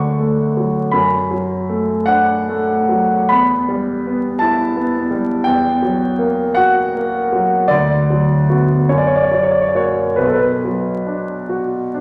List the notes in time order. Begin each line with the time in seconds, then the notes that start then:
Already playing: D2 F#3 A3 D4 F#5 C#6
0.20 A3
0.57 F#3
0.91 F#2 B5
1.31 F#3
1.69 A3
2.06 D4 F#5
2.49 A3
2.89 F#3
3.29 E2 B5
3.69 G3
4.07 B3
4.39 E4 A5
4.76 B3
5.11 G3
5.44 E2 G5
5.82 F#3
6.18 A#3
6.54 F#4 F#5
6.94 A#3
7.33 F#3
7.68 D2 D5
8.10 F#3
8.49 B3 F#4
8.89 F#2 C#5
8.98 D5
9.07 C#5
9.16 D5
9.23 C#5
9.31 F#3 D5
9.43 C#5
9.51 D5
9.61 C#5
9.68 D5
9.74 A#3 F#4 C#5
10.16 B1 B4
10.27 A4
10.33 B4
10.65 F#3
11.06 D4
11.49 F#4
11.94 D4